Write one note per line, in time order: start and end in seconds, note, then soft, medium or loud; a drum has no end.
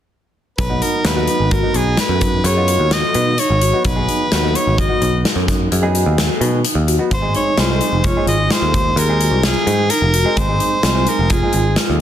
0.58 0.80 B1 medium
0.58 0.83 B4 medium
0.58 kick medium
0.58 closed hi-hat medium
0.69 0.98 F#3 medium
0.69 0.98 B3 medium
0.69 0.98 D#4 medium
0.69 0.98 F#4 medium
0.82 0.97 D#4 medium
0.82 1.07 A#4 medium
0.82 closed hi-hat medium
1.04 1.27 D#2 medium
1.04 1.14 F#3 medium
1.04 1.14 B3 medium
1.04 1.14 D#4 medium
1.04 1.14 F#4 medium
1.04 1.53 B4 medium
1.04 snare medium
1.04 closed hi-hat medium
1.16 1.53 F#3 medium
1.16 1.53 B3 medium
1.16 1.54 D#4 medium
1.16 1.54 F#4 medium
1.27 1.43 D#4 medium
1.27 closed hi-hat medium
1.40 1.62 G#1 medium
1.51 1.81 F#4 medium
1.51 1.78 A#4 medium
1.51 kick medium
1.51 closed hi-hat medium
1.63 2.37 F#3 medium
1.63 2.37 B3 medium
1.63 2.37 D#4 medium
1.63 2.37 F#4 medium
1.74 1.96 B1 medium
1.74 1.99 G#4 medium
1.74 closed hi-hat medium
1.97 2.14 F#4 medium
1.97 2.48 B4 medium
1.97 snare medium
1.97 closed hi-hat medium
2.09 2.42 F#2 medium
2.21 2.37 D#4 medium
2.21 kick medium
2.21 closed hi-hat medium
2.44 2.77 F#2 medium
2.44 2.60 G#4 medium
2.44 2.94 C#5 medium
2.44 closed hi-hat medium
2.56 3.30 F#3 medium
2.56 3.31 B3 medium
2.56 3.30 D#4 medium
2.56 3.30 F4 medium
2.68 2.83 F#4 medium
2.68 closed hi-hat medium
2.80 3.02 D#2 medium
2.91 3.07 F#4 medium
2.91 3.40 D#5 medium
2.91 snare medium
2.91 closed hi-hat medium
3.14 3.37 B2 medium
3.14 3.30 D#4 medium
3.14 closed hi-hat medium
3.38 3.53 D#4 medium
3.38 3.85 C#5 medium
3.38 closed hi-hat medium
3.50 3.72 G#1 medium
3.61 3.76 F#4 medium
3.61 closed hi-hat medium
3.73 3.92 F#3 medium
3.73 3.92 B3 medium
3.73 3.92 D#4 medium
3.73 3.92 F#4 medium
3.85 4.06 B1 medium
3.85 4.58 B4 medium
3.85 kick medium
3.85 closed hi-hat medium
3.96 4.24 F#3 medium
3.96 4.24 B3 medium
3.96 4.24 D#4 medium
3.96 4.24 G#4 medium
4.08 4.23 D#4 medium
4.08 closed hi-hat medium
4.31 4.54 D#2 medium
4.31 4.41 F#3 medium
4.31 4.41 B3 soft
4.31 4.41 D#4 medium
4.31 4.41 F#4 medium
4.31 4.47 F#4 medium
4.31 snare medium
4.31 closed hi-hat medium
4.43 4.80 F#3 medium
4.43 4.80 B3 medium
4.43 4.80 D#4 medium
4.43 4.80 F#4 medium
4.55 4.70 D#4 medium
4.55 4.78 C#5 medium
4.55 closed hi-hat medium
4.67 4.88 G#1 medium
4.78 5.09 F#4 medium
4.78 5.22 D#5 medium
4.78 kick medium
4.78 closed hi-hat medium
4.89 5.63 F#3 medium
4.89 5.63 B3 medium
4.89 5.63 D#4 medium
4.89 5.63 F#4 medium
5.02 5.23 B1 medium
5.02 closed hi-hat medium
5.25 5.40 F#4 medium
5.25 snare medium
5.25 closed hi-hat medium
5.36 5.69 F#2 medium
5.48 5.64 D#4 medium
5.48 kick medium
5.48 snare soft
5.48 closed hi-hat soft
5.72 6.04 F#2 medium
5.72 5.86 G#4 medium
5.72 closed hi-hat medium
5.82 6.56 F#3 medium
5.82 6.56 B3 medium
5.82 6.57 D#4 medium
5.82 6.57 G#4 medium
5.95 6.10 F#4 medium
5.95 closed hi-hat medium
6.06 6.28 D#2 medium
6.18 6.33 F#4 medium
6.18 snare loud
6.18 closed hi-hat medium
6.41 6.63 B2 medium
6.41 6.56 D#4 medium
6.41 closed hi-hat medium
6.65 6.80 D#4 medium
6.65 closed hi-hat medium
6.75 6.97 D#2 medium
6.87 7.03 F#4 medium
6.87 closed hi-hat soft
6.98 7.11 F#3 medium
6.98 7.11 B3 medium
6.98 7.11 D#4 medium
6.98 7.11 F#4 medium
7.11 7.33 G#1 medium
7.11 7.34 C5 medium
7.11 kick loud
7.11 closed hi-hat medium
7.22 7.50 G#3 medium
7.22 7.50 C4 medium
7.22 7.50 D#4 medium
7.22 7.50 G#4 medium
7.35 7.50 D#4 medium
7.35 7.61 C#5 medium
7.35 closed hi-hat soft
7.58 7.79 C2 medium
7.58 7.67 G#3 medium
7.58 7.67 C4 medium
7.58 7.67 D#4 medium
7.58 7.73 F4 medium
7.58 7.67 G#4 medium
7.58 8.08 C5 medium
7.58 snare medium
7.58 closed hi-hat medium
7.69 8.06 G#3 medium
7.69 8.06 C4 medium
7.69 8.07 D#4 medium
7.69 8.07 G#4 medium
7.81 7.96 D#4 medium
7.81 closed hi-hat medium
7.92 8.14 F1 medium
8.04 8.35 F4 medium
8.04 8.27 C#5 medium
8.04 kick medium
8.04 closed hi-hat medium
8.16 8.90 G#3 medium
8.16 8.90 C4 medium
8.16 8.90 D#4 medium
8.16 8.90 G#4 medium
8.27 8.49 G#1 medium
8.27 8.53 D#5 medium
8.27 closed hi-hat medium
8.50 8.66 F4 medium
8.50 9.00 C5 medium
8.50 snare loud
8.50 closed hi-hat medium
8.62 8.95 D#2 medium
8.74 8.89 D#4 medium
8.74 kick medium
8.74 closed hi-hat soft
8.96 9.29 D#2 medium
8.96 9.13 G#4 medium
8.96 9.44 A#4 medium
8.96 closed hi-hat medium
9.09 9.83 G#3 medium
9.09 9.83 C4 medium
9.09 9.83 D#4 medium
9.09 9.83 G#4 medium
9.21 9.36 F#4 medium
9.21 closed hi-hat medium
9.31 9.54 C2 medium
9.43 9.59 F4 medium
9.43 9.92 G#4 medium
9.43 snare loud
9.43 closed hi-hat medium
9.67 9.89 G#2 medium
9.67 9.82 D#4 medium
9.67 closed hi-hat medium
9.90 10.06 D#4 medium
9.90 10.40 A#4 medium
9.90 closed hi-hat medium
10.02 10.24 F1 medium
10.14 10.29 F#4 medium
10.14 closed hi-hat medium
10.25 10.44 G#3 medium
10.25 10.44 C4 medium
10.25 10.44 D#4 medium
10.25 10.44 G#4 medium
10.37 10.59 G#1 medium
10.37 11.10 C5 medium
10.37 kick medium
10.37 closed hi-hat medium
10.49 10.77 G#3 medium
10.49 10.77 C4 medium
10.49 10.77 D#4 medium
10.49 10.77 G#4 medium
10.60 10.75 D#4 medium
10.60 closed hi-hat medium
10.83 11.05 C2 medium
10.83 10.93 G#3 medium
10.83 10.93 C4 medium
10.83 10.93 D#4 soft
10.83 10.99 F4 medium
10.83 10.94 G#4 medium
10.83 snare medium
10.83 closed hi-hat medium
10.94 11.32 G#3 medium
10.94 11.32 C4 medium
10.94 11.32 D#4 medium
10.94 11.32 G#4 medium
11.07 11.22 D#4 medium
11.07 11.33 A#4 medium
11.07 closed hi-hat medium
11.19 11.41 F1 medium
11.30 11.61 F4 medium
11.30 11.78 G#4 medium
11.30 kick medium
11.30 closed hi-hat medium
11.42 12.01 G#3 medium
11.42 12.01 C4 medium
11.42 12.01 D#4 medium
11.42 12.01 G#4 medium
11.53 11.76 G#1 medium
11.53 closed hi-hat soft
11.76 11.92 F4 medium
11.76 snare medium
11.76 closed hi-hat medium
11.90 12.01 D#2 medium